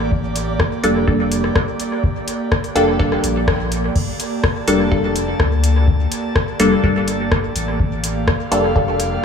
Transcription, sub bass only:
Already playing: A1
0.84 F1
2.76 F1
3.24 A#1
3.96 G1
4.68 F1
5.40 D2
6.60 F1
6.84 G1
7.56 A1
8.52 F1

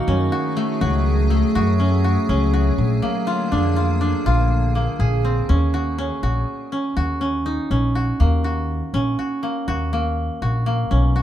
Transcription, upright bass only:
0.07 F#2
0.81 C#2
1.56 F#2
2.29 C#2
2.78 A#1
3.52 F2
4.26 A#1
4.99 A#1
5.49 D#2
6.23 A#1
6.97 D#2
7.71 A#1
8.20 D#2
8.93 A#1
9.68 D#2
10.42 A#1
10.91 B1

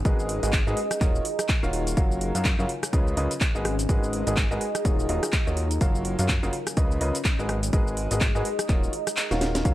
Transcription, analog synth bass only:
0.05 G#1
0.43 G#1
0.67 G#2
1.01 D#1
1.63 D#1
1.97 F#1
2.35 F#2
2.59 F#2
2.93 C#2
3.17 C#2
3.55 G#1
4.27 G#1
4.51 G#1
4.85 D#1
5.09 D#1
5.47 D#2
5.81 F#1
6.19 F#2
6.43 F#1
6.77 C#2
7.01 C#2
7.39 G#1
8.11 G#1
8.35 G#2
8.69 D#1
9.31 D#1
9.65 F#1

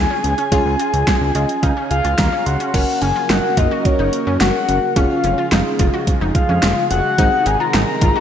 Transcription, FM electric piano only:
Already playing: C#4 F4 G#4
0.52 C#4 F4 G#4
1.35 D#5
1.63 F5
1.91 G#5
2.19 A#5
2.46 C6
2.74 C#4 F#4 A#4
4.96 C#4 F4 G#4
7.18 C4 D#4 G#4

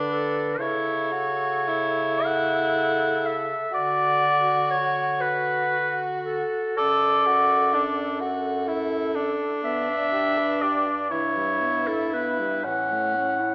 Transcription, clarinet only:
0.10 A4
0.59 C#5
2.25 F#5
3.26 E5
3.74 D5
4.70 C#5
5.20 B4
6.25 A4
6.77 D5
9.64 E5
10.61 D5
11.11 C#5
11.86 A4
12.13 B4
12.64 F#5

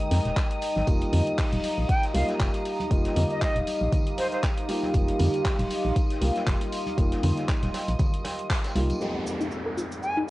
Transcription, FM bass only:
0.11 F2
0.25 D#1
0.76 G#1
0.88 F1
1.13 F2
1.53 D#1
1.78 A#1
2.15 C2
2.40 F1
2.91 F1
3.16 F2
3.56 D#1
3.81 A#1
4.94 F1
5.20 F2
5.59 D#1
5.85 A#1
6.21 C2
6.47 F1
6.98 F1
7.23 F2
7.63 D#1
7.88 A#1
8.76 C2

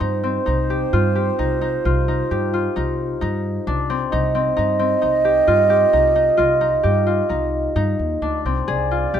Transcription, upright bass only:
0.01 G2
0.47 C2
0.93 G2
1.39 C2
1.85 C2
2.31 G2
2.77 C2
3.22 G2
3.67 C2
4.13 C2
4.58 G2
5.03 C2
5.48 G2
5.93 C2
6.39 C2
6.84 G2
7.30 C2
7.76 G2
7.99 D#2
8.22 D2
8.45 C2
8.68 C2
9.14 C2

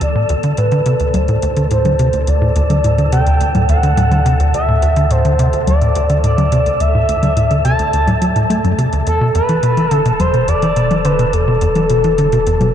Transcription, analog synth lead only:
0.02 D5
0.58 B4
1.15 C5
1.71 C5
2.28 D5
3.13 G5
3.69 F#5
4.54 E5
5.11 C5
5.68 D5
6.24 D5
6.80 E5
7.65 A5
9.07 A4
9.35 B4
9.93 A4
10.20 C5
10.48 D5
11.05 B4
11.33 A4

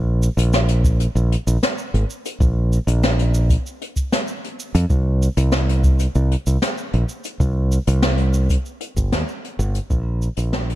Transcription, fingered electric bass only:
Already playing: A#1
0.37 A#1
1.15 A#1
1.47 A#1
1.94 G#1
2.40 A#1
2.87 A#1
4.75 F2
4.90 C2
5.37 C2
6.15 C2
6.47 C2
6.94 A#1
7.40 C2
7.87 C2
8.97 G1
9.12 D#2
9.59 G1
9.90 A#1
10.37 A#1

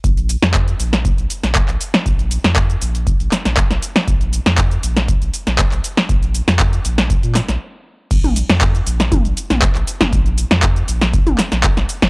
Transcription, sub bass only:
0.04 A#1
0.43 F2
0.80 A#1
1.18 A#1
1.43 A#1
1.69 A#1
2.06 A#1
2.44 F2
2.82 A#1
3.20 A#1
3.45 A#1
3.71 A#1
4.08 A#1
4.46 F2
4.83 A#1
5.22 A#1
5.47 A#1
5.72 A#1
6.09 A#1
6.48 F2
6.85 A#1
7.23 A#2
7.48 A#1
8.11 A#1
8.49 F2
8.87 A#1
9.25 A#1
9.50 A#1
9.76 A#1
10.13 A#1
10.51 F2
10.88 A#1
11.27 A#1
11.52 A#1
11.77 A#1

